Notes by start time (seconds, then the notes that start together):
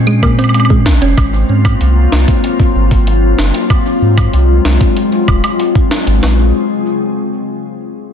Already playing: A#2 G#3 C4 C#4
0.07 G#3, cabasa, high woodblock
0.23 A#3, kick, high woodblock
0.39 C4, closed hi-hat, high woodblock
0.44 high woodblock
0.49 high woodblock
0.54 closed hi-hat, high woodblock
0.60 high woodblock
0.65 high woodblock
0.70 G#3, kick
0.86 G#1, snare
1.02 F1 C#4, closed hi-hat, cabasa
1.17 G#1 F#3 A#3 F4, kick, closed hi-hat, high woodblock
1.49 G#2, cabasa
1.65 kick, closed hi-hat, high woodblock
1.81 C2, closed hi-hat
2.12 C2, snare
2.28 kick, closed hi-hat
2.44 closed hi-hat
2.60 kick
2.75 G#1
2.91 kick, closed hi-hat
3.07 closed hi-hat
3.38 F#1, snare
3.54 closed hi-hat
3.70 G#3, kick, closed hi-hat, high woodblock
4.02 G#2
4.18 kick, closed hi-hat, high woodblock
4.33 C2, closed hi-hat
4.65 C2, snare
4.81 kick, closed hi-hat
4.97 closed hi-hat
5.12 cabasa
5.28 D#1, kick, high woodblock
5.44 closed hi-hat, high woodblock
5.60 closed hi-hat
5.75 kick
5.91 snare
6.07 G#1, closed hi-hat, cabasa
6.23 A#1, snare